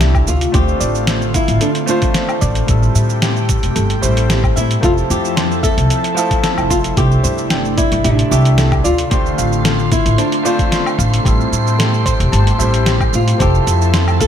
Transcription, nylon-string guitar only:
0.00 0.28 G4 loud
0.28 0.54 F4 medium
0.55 1.35 G4 loud
1.35 1.63 E4 medium
1.62 1.69 D4 medium
1.89 2.38 F4 medium
4.58 4.84 E4 loud
4.84 4.91 F4 loud
5.11 5.63 G4 loud
5.63 6.66 A4 loud
6.71 6.78 F4 medium
6.98 7.74 G4 loud
7.78 8.05 E4 medium
8.05 8.32 D4 medium
8.31 8.84 G4 loud
8.85 9.10 F4 medium
9.11 9.91 G4 loud
9.92 10.19 E4 medium
10.18 10.46 D4 medium
10.45 10.95 F4 medium
13.15 13.41 F4 medium
13.42 14.21 G4 loud
14.21 14.27 A4 loud

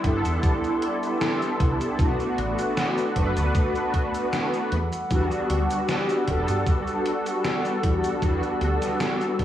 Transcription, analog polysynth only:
0.00 0.02 G3 medium
0.00 1.94 G3 medium
0.00 0.03 B3 medium
0.00 1.94 B3 medium
0.00 0.04 D4 medium
0.00 2.01 E4 loud
0.04 1.95 D4 medium
0.04 1.95 A4 loud
1.98 3.11 A3 medium
1.98 3.12 B3 medium
1.98 3.12 D4 medium
1.98 3.12 F#4 loud
3.14 4.69 A3 medium
3.14 4.69 B3 medium
3.14 4.70 D4 medium
3.14 4.70 B4 loud
5.09 6.23 G3 medium
5.09 6.23 B3 medium
5.09 6.24 D4 medium
5.09 6.24 F#4 loud
6.27 8.18 G3 loud
6.27 8.18 B3 medium
6.27 8.19 D4 medium
6.27 8.19 A4 loud
8.21 9.34 G3 medium
8.21 9.35 B3 medium
8.21 9.35 D4 medium
8.21 9.36 F#4 loud
9.38 9.45 G3 medium
9.38 9.45 B3 medium
9.38 9.45 D4 medium
9.38 9.45 A4 loud

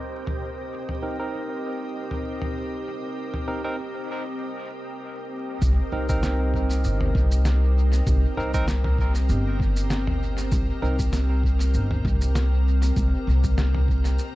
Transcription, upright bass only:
5.62 5.77 C2 loud
5.92 6.81 C2 medium
6.84 7.12 G1 medium
7.15 8.04 C2 loud
8.07 8.21 C2 loud
8.37 9.27 C2 medium
9.29 10.49 G1 medium
10.52 10.67 C2 loud
10.82 11.71 C2 medium
11.74 12.01 G1 medium
12.05 12.94 C2 loud
12.96 13.11 C2 loud
13.27 14.16 C2 medium

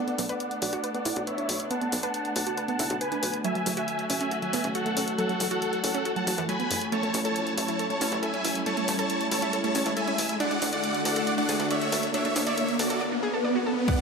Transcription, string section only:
0.00 10.36 A3 medium
0.00 3.41 B3 medium
0.00 3.41 D4 medium
3.44 6.89 F#3 medium
3.44 6.89 F#4 medium
6.92 10.37 C#4 medium
6.92 12.97 E4 medium
10.40 12.98 D3 medium
10.40 12.98 D4 medium
10.40 12.98 F#4 medium
10.40 12.98 A4 medium
13.88 14.01 A3 medium
13.88 14.01 B3 medium
13.88 14.01 D4 medium

